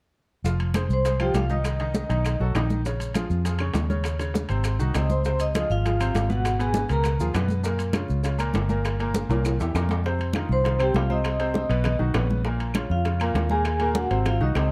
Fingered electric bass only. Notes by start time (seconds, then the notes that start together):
0.44 F1
0.89 C2
1.34 C2
2.10 B1
2.40 B1
2.55 A#1
3.30 F2
3.74 D#2
4.50 G#1
4.80 C2
4.95 C#2
5.70 G#1
6.15 G#1
6.90 C#2
7.20 D#2
7.34 F#2
8.10 C#2
8.54 G1
9.29 C2
9.60 E2
9.75 F2
10.49 C2
10.94 C2
11.70 B1
12.00 B1
12.15 A#1
12.90 F2
13.34 D#2
14.11 G#1
14.41 C2
14.55 C#2